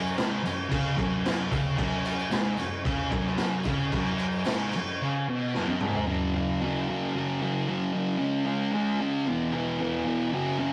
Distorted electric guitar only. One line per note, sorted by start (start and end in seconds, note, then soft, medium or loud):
0.00 0.17 F#2 loud
0.17 0.43 G#2 loud
0.43 0.66 F#2 medium
0.69 0.96 C#3 loud
0.96 1.50 F#2 loud
1.52 1.78 C#3 loud
1.77 2.30 F#2 loud
2.31 2.58 G#2 loud
2.58 2.80 F#2 medium
2.85 3.11 C#3 loud
3.11 3.64 F#2 loud
3.65 3.92 C#3 loud
3.93 4.45 F#2 loud
4.46 4.72 G#2 loud
4.76 4.96 F#2 medium
5.02 5.27 C#3 loud
5.29 5.54 B2 loud
5.57 5.81 F#2 loud
5.82 6.06 G#2 loud
6.07 6.34 F#2 medium
6.07 6.35 C#3 loud
6.07 6.36 F#3 medium
6.35 6.60 F#2 medium
6.35 6.61 C#3 loud
6.35 6.63 F#3 medium
6.61 6.87 F#2 medium
6.61 6.87 C#3 medium
6.61 6.89 F#3 loud
6.88 7.13 F#2 medium
6.88 7.14 C#3 medium
6.88 7.15 F#3 loud
7.14 7.39 F#2 medium
7.14 7.40 C#3 loud
7.14 7.41 F#3 loud
7.40 7.66 F#2 medium
7.40 7.67 C#3 medium
7.40 7.68 F#3 loud
7.67 7.92 F#2 medium
7.67 7.93 C#3 medium
7.67 7.95 F#3 loud
7.93 8.19 F#2 medium
7.93 8.17 C#3 medium
7.93 8.19 F#3 medium
8.18 8.44 C#3 loud
8.18 8.46 G#3 loud
8.18 8.46 C#4 loud
8.46 8.72 C#3 medium
8.46 8.74 G#3 loud
8.46 8.75 C#4 loud
8.73 8.99 C#3 medium
8.73 9.00 G#3 loud
8.73 9.00 C#4 medium
9.00 9.26 C#3 medium
9.00 9.26 G#3 medium
9.00 9.26 C#4 medium
9.26 9.52 E2 loud
9.26 9.52 B2 loud
9.26 9.54 E3 loud
9.53 9.80 E2 loud
9.53 9.79 B2 loud
9.53 9.81 E3 loud
9.80 10.03 E2 medium
9.80 10.04 B2 medium
9.80 10.05 E3 loud
10.04 10.31 E2 medium
10.04 10.32 B2 loud
10.04 10.32 E3 medium
10.32 10.57 F#2 medium
10.32 10.58 C#3 loud
10.32 10.59 F#3 loud
10.58 10.73 F#2 medium
10.58 10.73 C#3 medium
10.58 10.73 F#3 medium